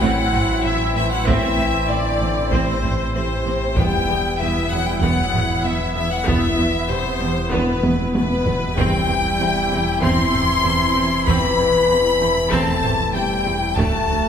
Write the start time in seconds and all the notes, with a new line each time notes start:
Already playing: A1 E3 C4 E4, impact
0.00 A1 A2 F#3 C4 F#5, taiko
0.32 A1 A2 C4, taiko low-mid
0.63 A1 A2 E3 C4 E5
0.94 A1 A2 E3 C4 E5
1.11 F#3 F#5
1.25 A1 A2 E3 C4 E5, taiko
1.58 A1 A2 C4
1.89 A1 A2 D3 C4 D5
2.21 A1 A2 C4
2.51 A1 A2 C3 C4 C5, taiko
2.83 A1 A2 C4, taiko low-mid
3.14 A1 A2 C3 C4 C5
3.45 A1 A2 C4
3.76 E1 E2 E3 G3 B3 E4 G5, taiko
4.07 E1 E2 B3
4.38 E1 E2 E3 B3 E5
4.69 E1 E2 F#3 B3 F#5
4.84 G3 G5
5.00 E1 E2 F#3 B3 F#5, taiko
5.33 E1 E2 B3, taiko low-mid
5.63 E1 E2 E3 B3 E5
5.94 E1 E2 E3 B3 E5
6.10 F#3 F#5
6.25 E1 E2 E3 B3 E5, taiko
6.56 E1 E2 B3
6.86 E1 E2 C3 G3 C5
6.90 C5
7.19 E1 E2 G3
7.51 E1 E2 B2 B3 B4, taiko
7.83 E1 E2 B3, taiko high
8.13 E1 E2 B2 B3 B4, taiko high
8.17 B4
8.45 E1 E2 B3, taiko low
8.75 E1 E2 C3 E3 G3 C4 E4 G5, taiko
9.09 E1 E2 C4
9.39 E1 E2 C4
9.71 E1 E2 C4
10.02 E1 E2 C4 C6, taiko
10.33 E1 E2 C4, taiko low-mid
10.65 E1 E2 C4
10.96 E1 E2 C4
11.26 E1 E2 C4 B4 B5, taiko
11.58 E1 E2 C4
11.90 E1 E2 C4
12.21 E1 E2 C4
12.51 E1 E2 A3 C4 A5, taiko
12.83 E1 E2 C4, taiko low-mid
13.12 E1 E2 G3 C4 G5
13.45 E1 E2 C4
13.75 D1 D2 F#3 A3 F#4 A5, taiko
14.08 D2 A3